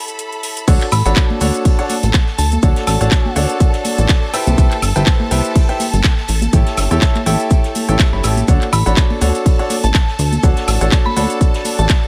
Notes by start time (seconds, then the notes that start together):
Already playing: E4 G4 A4 C#5 G5 B5
0.08 closed hi-hat, shaker
0.19 closed hi-hat, shaker
0.32 closed hi-hat
0.43 open hi-hat, shaker
0.57 closed hi-hat, shaker
0.68 D2 D4 F#4 A4 C#5 F#5 A5, kick, closed hi-hat, crash, tambourine, shaker
0.81 clap, closed hi-hat, tambourine
0.92 A1 B5, open hi-hat, tambourine, high woodblock, shaker
1.05 A1 D4 F#4 A4 C#5 F#5 B5, closed hi-hat, tambourine, shaker
1.16 D4 F#4 C#5, kick, snare, clap, closed hi-hat, tambourine, shaker
1.30 tambourine, high conga
1.40 D2 D4 F#4 A4 C#5 F#5, open hi-hat, tambourine, shaker
1.54 closed hi-hat, tambourine, shaker
1.65 kick, closed hi-hat, open hi-hat, tambourine, shaker
1.79 D4 F#4 A4 C#5 F#5, closed hi-hat, tambourine
1.89 open hi-hat, tambourine, high conga, shaker
2.03 A1, closed hi-hat, tambourine, shaker
2.13 kick, snare, clap, closed hi-hat, tambourine, shaker
2.27 snare, tambourine
2.38 D2 A5, open hi-hat, tambourine, shaker
2.52 closed hi-hat, tambourine, high conga, shaker
2.62 D2 D4 F#4 A4 C#5 F#5, kick, closed hi-hat, tambourine, shaker
2.76 snare, closed hi-hat, tambourine
2.87 A1 A5, snare, open hi-hat, tambourine, high woodblock, shaker
3.01 A1 D4 F#4 A4 C#5 F#5, closed hi-hat, tambourine, shaker
3.11 D4 A4 A5, kick, snare, clap, closed hi-hat, tambourine, shaker
3.25 tambourine, high conga
3.36 D2 D4 F#4 A4 C#5 F#5, open hi-hat, tambourine, shaker
3.50 closed hi-hat, tambourine, shaker
3.60 kick, closed hi-hat, tambourine, shaker
3.73 snare, closed hi-hat, tambourine
3.85 open hi-hat, tambourine, high conga, shaker
3.98 A1, closed hi-hat, tambourine, shaker
4.09 kick, snare, clap, closed hi-hat, tambourine, shaker
4.23 tambourine
4.33 E4 G4 B4 C5 G5, open hi-hat, tambourine, high woodblock, shaker
4.46 C2, closed hi-hat, tambourine, high conga, shaker
4.58 C2 E4 G4 B4 C5 G5, kick, closed hi-hat, tambourine, shaker
4.71 clap, closed hi-hat, tambourine
4.82 G1, open hi-hat, tambourine, high woodblock, shaker
4.96 G1 E4 G4 B4 C5 G5, closed hi-hat, tambourine, shaker
5.06 E4 B4 C5 A5, kick, snare, clap, closed hi-hat, tambourine, shaker
5.20 tambourine, high conga
5.31 C2 E4 G4 B4 C5 G5, open hi-hat, tambourine, shaker
5.45 closed hi-hat, tambourine, shaker
5.55 kick, closed hi-hat, open hi-hat, tambourine, shaker
5.69 E4 G4 B4 C5 G5, closed hi-hat, tambourine
5.80 open hi-hat, tambourine, high conga, shaker
5.93 G1, closed hi-hat, tambourine, shaker
6.04 kick, snare, clap, closed hi-hat, tambourine, shaker
6.17 snare, tambourine
6.28 A1, open hi-hat, tambourine, shaker
6.42 closed hi-hat, tambourine, high conga, shaker
6.53 A1 E4 G4 A4 C#5 G5, kick, closed hi-hat, tambourine, shaker
6.66 snare, closed hi-hat, tambourine
6.77 G1, snare, open hi-hat, tambourine, high woodblock, shaker
6.91 E2 E4 G4 A4 C#5 G5, closed hi-hat, tambourine, shaker
7.01 E4 G4 A4 C#5 A5, kick, snare, clap, closed hi-hat, tambourine, shaker
7.15 clap, closed hi-hat, tambourine, high conga
7.26 A1 E4 G4 A4 C#5 G5, open hi-hat, tambourine, shaker
7.40 closed hi-hat, tambourine, shaker
7.50 kick, closed hi-hat, tambourine, shaker
7.64 snare, closed hi-hat, tambourine
7.75 open hi-hat, tambourine, high conga, shaker
7.89 A1 E4 G4 A4 C#5 G5, closed hi-hat, tambourine, shaker
7.99 kick, snare, clap, closed hi-hat, tambourine, shaker
8.13 G1 E4 G4 A4 C#5 B5, tambourine
8.23 A1 E4 G4 A4 C#5 G5, open hi-hat, tambourine, high woodblock, shaker
8.37 closed hi-hat, tambourine, high conga, shaker
8.47 D2 D4 F#4 A4 C#5 F#5 A5, kick, closed hi-hat, tambourine, shaker
8.61 clap, closed hi-hat, tambourine
8.73 A1 B5, open hi-hat, tambourine, high woodblock, shaker
8.86 A1 D4 F#4 A4 C#5 F#5 B5, closed hi-hat, tambourine, shaker
8.97 D4 A4 A5, kick, snare, clap, closed hi-hat, tambourine, shaker
9.10 tambourine, high conga
9.21 D2 D4 F#4 A4 C#5 F#5, open hi-hat, tambourine, shaker
9.34 closed hi-hat, tambourine, shaker
9.46 kick, closed hi-hat, open hi-hat, tambourine, shaker
9.59 D4 F#4 A4 C#5 F#5, closed hi-hat, tambourine
9.70 open hi-hat, tambourine, high conga, shaker
9.83 A1 A5, closed hi-hat, tambourine, shaker
9.94 A5, kick, snare, clap, closed hi-hat, tambourine, shaker
10.08 snare, tambourine
10.19 D2, open hi-hat, tambourine, shaker
10.32 closed hi-hat, tambourine, high conga, shaker
10.43 D2 D4 F#4 A4 C#5 F#5, kick, closed hi-hat, tambourine, shaker
10.57 snare, closed hi-hat, tambourine
10.68 A1, snare, open hi-hat, tambourine, high woodblock, shaker
10.80 A1 D4 F#4 A4 C#5 F#5, closed hi-hat, tambourine, shaker
10.92 D4 A4 A5, kick, snare, clap, closed hi-hat, tambourine, shaker
11.06 B5, tambourine, high conga
11.16 D2 D4 F#4 A4 C#5 F#5 B5, open hi-hat, tambourine, shaker
11.30 closed hi-hat, tambourine, shaker
11.41 kick, closed hi-hat, tambourine, shaker
11.54 snare, closed hi-hat, tambourine
11.65 open hi-hat, tambourine, high conga, shaker
11.79 A1 A5, closed hi-hat, tambourine, shaker
11.89 kick, snare, clap, closed hi-hat, tambourine, shaker
12.03 tambourine